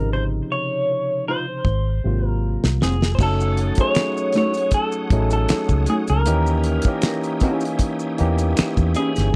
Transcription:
0.00 0.40 G#1 medium
0.00 1.11 C3 medium
0.00 1.10 C#3 medium
0.00 1.11 F3 medium
0.00 1.12 D#4 medium
0.00 0.13 A#4 medium
0.13 0.23 C5 loud
0.52 1.28 C#5 medium
0.90 muted nylon-string guitar stroke soft
1.28 1.44 D#4 medium
1.28 1.45 F4 medium
1.28 2.27 C5 medium
1.28 1.46 C5 medium
1.65 1.99 G#1 medium
1.65 kick medium
2.04 2.55 G#1 medium
2.04 3.07 C3 medium
2.04 3.07 F#3 medium
2.04 3.08 A#3 medium
2.04 3.08 F4 medium
2.27 2.77 A#4 medium
2.64 2.79 C2 medium
2.64 snare medium
2.82 3.15 F1 medium
2.82 2.94 F#3 soft
2.82 2.95 C4 soft
2.82 2.95 F4 medium
2.82 3.14 G#4 medium
2.82 snare medium
3.02 snare medium
3.15 3.20 C5 medium
3.15 6.23 C#5 medium
3.15 6.23 F#5 medium
3.15 6.23 D#6 medium
3.15 kick loud
3.15 crash loud
3.19 3.70 F#1 loud
3.19 3.71 F#3 medium
3.19 3.71 A3 medium
3.19 3.72 C#4 medium
3.19 3.72 D#4 medium
3.19 3.72 A4 medium
3.19 3.80 A4 medium
3.19 maracas medium
3.40 maracas medium
3.57 closed hi-hat medium
3.75 4.97 F#3 medium
3.75 4.97 A3 medium
3.75 kick medium
3.75 closed hi-hat medium
3.75 maracas soft
3.80 4.98 C#4 medium
3.80 4.98 D#4 medium
3.80 4.98 G#4 medium
3.80 4.36 C#5 loud
3.95 finger snap medium
3.95 muted nylon-string guitar stroke soft
3.95 snare loud
3.95 closed hi-hat medium
3.95 maracas medium
4.17 maracas soft
4.33 4.52 A3 medium
4.33 4.52 D#4 medium
4.33 snare soft
4.33 closed hi-hat medium
4.33 maracas soft
4.37 4.53 F#4 loud
4.37 4.74 C#5 loud
4.54 closed hi-hat soft
4.54 maracas soft
4.71 5.32 A4 loud
4.71 kick medium
4.71 closed hi-hat medium
4.71 maracas medium
4.92 maracas soft
5.10 5.45 A1 medium
5.10 6.14 F#3 medium
5.10 6.15 A3 medium
5.10 6.15 C#4 medium
5.10 6.15 D#4 medium
5.10 5.19 G#4 medium
5.10 kick loud
5.10 closed hi-hat medium
5.20 6.19 A4 medium
5.30 5.85 A4 medium
5.30 closed hi-hat soft
5.30 maracas medium
5.49 finger snap medium
5.49 muted fingered electric bass stroke soft
5.49 snare loud
5.49 closed hi-hat medium
5.49 maracas medium
5.69 5.85 C#2 medium
5.69 kick medium
5.69 maracas soft
5.86 6.02 A3 soft
5.86 6.02 D#4 medium
5.86 5.95 G#4 medium
5.86 closed hi-hat medium
5.86 maracas soft
5.90 6.03 F#4 medium
6.08 6.29 C#2 medium
6.08 7.56 A#4 medium
6.08 closed hi-hat medium
6.08 maracas soft
6.25 6.79 D#2 medium
6.25 6.78 E3 medium
6.25 6.78 A#3 medium
6.25 6.79 C#4 medium
6.25 6.79 D#4 medium
6.25 6.79 G4 medium
6.25 9.30 C#5 medium
6.25 9.30 E5 medium
6.25 9.30 G5 medium
6.25 9.30 D#6 medium
6.25 closed hi-hat loud
6.25 maracas medium
6.46 maracas soft
6.64 closed hi-hat medium
6.82 7.36 E3 medium
6.82 kick medium
6.82 closed hi-hat medium
6.82 maracas soft
6.86 7.36 A#3 medium
6.86 7.36 C#4 medium
6.86 7.37 D#4 medium
6.86 7.37 G4 medium
7.02 finger snap medium
7.02 snare loud
7.02 maracas medium
7.03 finger snap medium
7.03 muted nylon-string guitar stroke soft
7.03 closed hi-hat medium
7.24 closed hi-hat soft
7.24 maracas soft
7.40 8.10 E3 medium
7.40 8.11 A#3 medium
7.40 7.63 C#4 medium
7.40 8.11 C#4 medium
7.40 8.11 D#4 medium
7.40 7.63 E4 medium
7.40 7.64 G4 medium
7.40 kick medium
7.40 closed hi-hat medium
7.40 maracas soft
7.44 8.12 A#4 medium
7.56 8.36 G#4 medium
7.61 maracas soft
7.65 closed hi-hat medium
7.79 kick medium
7.79 closed hi-hat medium
7.79 maracas medium
7.99 maracas soft
8.18 8.53 E2 loud
8.18 9.21 E3 medium
8.18 9.22 A#3 medium
8.18 9.22 C#4 medium
8.18 9.23 D#4 medium
8.18 9.23 G4 loud
8.18 closed hi-hat medium
8.38 closed hi-hat medium
8.38 maracas medium
8.57 finger snap medium
8.57 snare loud
8.57 closed hi-hat medium
8.57 maracas medium
8.59 finger snap medium
8.59 muted fingered electric bass stroke soft
8.77 8.93 E2 medium
8.77 kick medium
8.77 maracas soft
8.95 9.10 C#4 medium
8.95 9.36 G#4 medium
8.95 closed hi-hat medium
8.95 maracas medium
8.99 9.11 E4 medium
8.99 9.11 G4 medium
9.16 9.33 G1 medium
9.16 snare soft
9.16 closed hi-hat medium
9.16 maracas soft

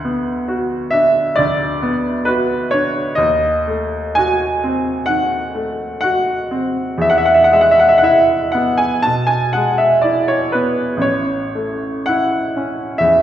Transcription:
0.00 1.32 D2 soft
0.00 0.92 F#5 medium
0.05 0.76 B3 soft
0.48 1.20 F#4 soft
0.91 1.66 D4 soft
0.91 1.37 E5 medium
1.36 3.15 D2 soft
1.36 2.27 D5 medium
1.83 2.55 B3 soft
2.25 3.00 F#4 soft
2.25 2.71 B4 medium
2.71 3.19 D4 soft
2.71 3.17 C#5 medium
3.15 5.04 D#2 medium
3.15 4.16 D#5 medium
3.68 4.46 A3 soft
4.15 4.91 F#4 soft
4.15 5.08 G#5 medium
4.64 5.36 C4 soft
5.06 5.84 D#3 soft
5.06 5.99 F#5 medium
5.55 6.32 A3 soft
6.01 6.82 F#4 soft
6.01 7.00 F#5 medium
6.51 7.01 C4 soft
6.98 8.99 E2 soft
6.98 7.10 E5 medium
7.10 7.19 F#5 medium
7.18 7.27 E5 medium
7.25 7.35 F#5 medium
7.34 7.44 E5 medium
7.44 7.53 F#5 medium
7.52 8.33 G#3 soft
7.52 7.62 E5 medium
7.61 7.71 F#5 medium
7.71 7.80 E5 medium
7.79 7.88 F#5 medium
7.89 7.97 E5 medium
7.98 8.06 F#5 medium
8.02 8.84 E4 soft
8.02 8.53 E5 medium
8.52 9.36 B3 soft
8.52 8.78 F#5 medium
8.78 9.04 G#5 medium
9.03 9.86 B2 soft
9.03 9.29 A5 medium
9.27 9.54 G#5 medium
9.53 10.35 G#3 soft
9.53 9.79 F#5 medium
9.78 10.04 E5 medium
10.02 10.84 E4 soft
10.02 10.28 D5 medium
10.28 10.54 C#5 medium
10.52 11.04 B3 soft
10.52 11.03 B4 medium
10.97 12.94 A1 soft
11.02 12.07 C#5 medium
11.55 12.38 A3 soft
12.06 12.84 E4 soft
12.06 13.00 F#5 medium
12.56 13.22 C#4 soft
12.98 13.22 E2 soft
12.98 13.22 E5 medium

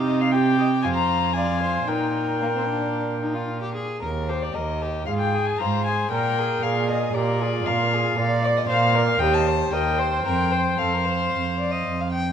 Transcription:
0.00 0.86 C3 medium
0.00 0.35 D#4 medium
0.00 0.30 G4 soft
0.06 0.22 D#5 medium
0.21 0.33 F5 medium
0.31 0.85 G4 medium
0.31 0.58 G4 medium
0.31 0.82 G5 medium
0.59 0.67 D#5 soft
0.82 1.88 F2 soft
0.82 1.34 F4 soft
0.82 1.35 C5 medium
0.82 0.88 G#5 medium
0.95 1.35 A#5 medium
1.33 1.87 F4 soft
1.33 1.62 D5 medium
1.33 1.89 G#5 medium
1.62 1.90 C5 soft
1.87 3.78 A#2 soft
1.87 2.36 D#4 soft
1.87 3.75 A#4 soft
1.87 3.48 G5 medium
2.42 2.47 A#3 soft
2.56 2.67 C4 soft
2.68 3.21 D4 soft
3.22 3.36 D#4 soft
3.34 3.61 F4 soft
3.62 3.74 G4 soft
3.74 4.01 G#4 soft
4.02 4.49 D#2 soft
4.02 4.31 A#4 soft
4.28 4.56 G4 soft
4.28 4.44 C5 soft
4.43 4.56 D5 soft
4.54 5.01 D#2 soft
4.54 4.84 A#4 soft
4.54 5.06 D#5 medium
4.82 5.06 G4 soft
5.06 5.54 G#2 soft
5.06 5.36 F4 soft
5.06 5.61 G#4 soft
5.06 5.12 F5 medium
5.19 5.48 G5 medium
5.34 5.62 G#4 soft
5.46 5.60 G#5 medium
5.59 6.06 G#2 soft
5.59 5.89 F4 soft
5.59 6.11 C5 soft
5.59 5.85 A#5 medium
5.85 6.12 G#4 soft
5.85 6.11 G#5 medium
6.11 6.57 A#2 soft
6.11 6.65 A#4 soft
6.11 6.40 A#4 soft
6.11 6.64 G5 medium
6.39 6.66 G#4 soft
6.62 7.08 A#2 medium
6.62 7.16 G#4 soft
6.62 6.90 A#4 soft
6.62 6.89 F5 medium
6.89 7.15 G#4 soft
6.89 7.16 D#5 medium
7.14 7.60 A#2 medium
7.14 7.41 G4 soft
7.14 7.43 A#4 soft
7.14 7.68 D5 medium
7.39 8.17 F4 medium
7.39 7.69 G#4 soft
7.66 8.12 A#2 medium
7.66 7.95 A#4 soft
7.66 8.18 F5 medium
7.94 8.18 G#4 soft
8.17 8.63 A#2 medium
8.17 8.68 D5 medium
8.17 8.45 F5 soft
8.44 8.71 D5 soft
8.44 8.49 D5 medium
8.57 8.62 D#5 medium
8.68 9.14 A#2 medium
8.68 8.97 C5 medium
8.68 9.21 F5 medium
8.68 8.96 F5 soft
8.95 9.23 A#4 medium
8.95 9.20 D5 soft
9.19 9.67 D#2 medium
9.19 9.74 G4 medium
9.19 9.48 D#5 soft
9.19 9.35 G5 medium
9.34 9.73 A5 medium
9.46 9.75 C5 soft
9.72 10.19 D#2 medium
9.72 10.00 A#4 medium
9.72 10.00 D#5 soft
9.72 10.25 G5 medium
9.98 10.25 C5 soft
9.98 10.24 C5 soft
10.25 10.73 F2 medium
10.25 10.53 A#4 soft
10.25 12.09 C5 medium
10.25 10.80 G5 medium
10.52 10.78 C5 soft
10.78 11.27 F2 soft
10.78 10.95 A4 soft
10.78 11.86 F5 medium
10.93 11.06 A#4 soft
11.05 11.59 C5 soft
11.33 11.80 F2 soft
11.60 11.73 D5 soft
11.71 12.02 D#5 soft
11.86 12.32 F2 soft
12.00 12.11 F5 soft
12.12 12.32 G5 soft

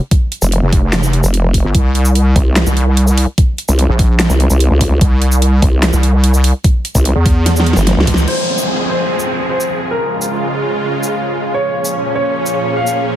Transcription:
0.11 kick loud
0.11 closed hi-hat medium
0.32 closed hi-hat soft
0.42 0.61 F1 medium
0.42 shaker medium
0.52 closed hi-hat medium
0.62 1.22 F1 loud
0.73 kick loud
0.73 open hi-hat medium
0.93 snare loud
0.93 clap medium
0.93 closed hi-hat medium
1.03 shaker medium
1.13 closed hi-hat medium
1.24 1.63 F1 loud
1.24 shaker medium
1.34 closed hi-hat medium
1.54 kick medium
1.54 open hi-hat medium
1.64 1.73 G1 loud
1.75 2.34 C2 loud
1.75 kick loud
1.75 closed hi-hat medium
1.95 closed hi-hat medium
2.05 shaker medium
2.15 closed hi-hat medium
2.36 2.65 C2 medium
2.36 kick loud
2.36 open hi-hat medium
2.56 snare loud
2.56 clap medium
2.56 closed hi-hat medium
2.67 3.26 C2 loud
2.67 shaker medium
2.77 closed hi-hat medium
2.97 closed hi-hat medium
3.07 shaker medium
3.18 open hi-hat medium
3.38 kick loud
3.38 closed hi-hat medium
3.58 closed hi-hat medium
3.69 3.87 C2 loud
3.69 shaker medium
3.79 closed hi-hat medium
3.89 4.28 A#1 loud
3.99 kick loud
3.99 open hi-hat medium
4.20 snare loud
4.20 clap medium
4.20 closed hi-hat medium
4.30 4.49 C2 loud
4.30 shaker medium
4.40 closed hi-hat medium
4.50 4.69 C2 loud
4.50 shaker medium
4.60 closed hi-hat medium
4.71 5.00 C#2 loud
4.81 kick medium
4.81 open hi-hat medium
5.01 5.61 C2 loud
5.01 kick loud
5.01 closed hi-hat medium
5.22 closed hi-hat medium
5.32 shaker medium
5.42 closed hi-hat medium
5.62 5.91 C2 loud
5.62 kick loud
5.62 open hi-hat medium
5.83 snare loud
5.83 clap medium
5.83 closed hi-hat medium
5.93 6.53 C2 loud
5.93 shaker medium
6.03 closed hi-hat medium
6.24 closed hi-hat medium
6.34 shaker medium
6.44 open hi-hat loud
6.64 kick loud
6.64 closed hi-hat medium
6.85 closed hi-hat medium
6.95 7.14 C2 loud
6.95 kick medium
6.95 shaker medium
7.05 closed hi-hat medium
7.15 7.75 E2 loud
7.26 kick loud
7.26 open hi-hat medium
7.46 snare medium
7.46 closed hi-hat medium
7.56 snare medium
7.56 shaker medium
7.66 closed hi-hat medium
7.73 7.95 G1 loud
7.73 snare medium
7.73 shaker medium
7.87 snare medium
7.87 closed hi-hat medium
7.97 8.06 C#2 loud
7.97 snare loud
8.07 8.26 C#2 loud
8.07 kick medium
8.07 open hi-hat loud
8.14 snare loud
8.14 shaker medium
8.28 9.89 F3 medium
8.28 9.89 C4 medium
8.28 9.89 G#4 medium
8.28 13.16 G#4 medium
8.28 8.81 C5 medium
8.28 crash medium
8.28 downlifter medium
8.51 13.16 F5 medium
8.58 shaker medium
8.89 9.42 C5 medium
9.20 shaker medium
9.50 9.74 C5 medium
9.60 shaker soft
9.91 11.53 C#3 medium
9.91 11.53 G#3 medium
9.91 11.53 F4 medium
9.91 11.46 A#4 medium
10.15 13.16 C#5 medium
10.22 shaker medium
11.03 shaker soft
11.54 13.16 A#2 medium
11.54 13.16 F3 medium
11.54 13.16 A#3 medium
11.54 13.16 C#4 medium
11.54 12.07 C#5 medium
11.85 shaker medium
12.15 12.69 C#5 medium
12.46 shaker medium
12.77 13.00 F5 medium
12.87 shaker soft

